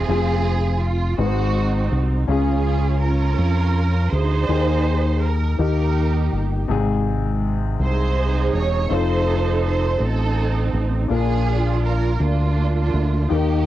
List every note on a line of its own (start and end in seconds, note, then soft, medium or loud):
0.00 0.79 C4 medium
0.00 0.79 F4 medium
0.00 0.82 G#4 loud
0.08 1.14 F1 loud
0.08 1.17 C4 medium
0.08 1.19 F4 medium
0.08 1.19 G#4 medium
0.82 1.19 F4 medium
1.18 1.88 G#1 loud
1.18 2.25 G#2 medium
1.18 2.28 G#3 medium
1.18 2.28 C4 medium
1.18 2.26 C4 medium
1.18 2.29 D#4 medium
1.18 2.26 D#4 medium
1.18 1.97 F#4 loud
1.18 2.29 F#4 medium
1.18 1.25 B4 medium
1.26 2.32 C5 medium
1.92 2.25 C2 loud
2.28 3.34 C#2 loud
2.28 3.35 C#3 medium
2.28 4.44 C#4 medium
2.28 3.03 C#4 medium
2.28 4.45 F4 medium
2.28 3.04 F4 medium
2.28 2.98 G#4 loud
2.28 4.46 G#4 medium
3.03 4.09 C#4 medium
3.03 4.10 F4 medium
3.03 4.12 A#4 loud
3.38 4.08 F2 loud
4.12 4.46 D2 medium
4.12 5.19 D#4 medium
4.12 5.19 G#4 medium
4.12 5.22 C5 loud
4.49 5.55 D#2 loud
4.49 5.55 D#3 medium
4.49 5.57 A#3 medium
4.49 5.58 D#4 medium
4.49 5.59 G#4 medium
5.24 5.59 A#4 medium
5.59 6.28 D#2 loud
5.59 6.65 D#3 medium
5.59 6.69 A#3 medium
5.59 6.68 D#4 medium
5.59 6.66 D#4 medium
5.59 6.69 G4 medium
5.59 6.66 G4 medium
5.59 6.38 A#4 medium
6.33 6.66 G1 medium
6.68 7.75 G#1 loud
6.68 7.75 G#2 medium
6.68 8.85 C3 medium
6.68 8.85 D#4 medium
6.68 8.86 G#4 medium
7.79 8.49 C2 medium
7.79 8.87 D#4 medium
7.79 8.87 G#4 medium
7.79 8.50 C5 loud
8.53 8.86 E1 medium
8.53 8.90 C#5 loud
8.89 9.96 F1 loud
8.89 11.05 A3 medium
8.89 11.06 C4 medium
8.89 11.06 D#4 medium
8.89 9.97 D#4 medium
8.89 11.06 F4 medium
8.89 9.97 A4 medium
8.89 9.63 C5 loud
8.89 11.07 C5 medium
9.64 9.98 C5 loud
10.00 10.69 A1 loud
10.00 11.06 C4 medium
10.00 11.06 D#4 medium
10.00 10.82 A4 loud
10.73 11.07 A1 medium
11.08 12.16 A#1 loud
11.08 12.16 A#2 medium
11.08 13.25 D4 medium
11.08 12.17 D4 medium
11.08 13.26 F4 medium
11.08 12.17 F4 medium
11.08 11.80 G#4 loud
11.08 13.27 A#4 medium
11.84 12.20 A#4 medium
12.20 12.89 D2 loud
12.20 13.27 A#3 medium
12.20 13.26 D4 medium
12.20 13.30 F4 medium
12.94 13.27 D2 loud
13.29 13.66 D#2 loud
13.29 13.66 D#3 medium
13.29 13.66 A#3 medium
13.29 13.66 D#4 medium
13.29 13.66 G4 medium
13.29 13.66 A#4 medium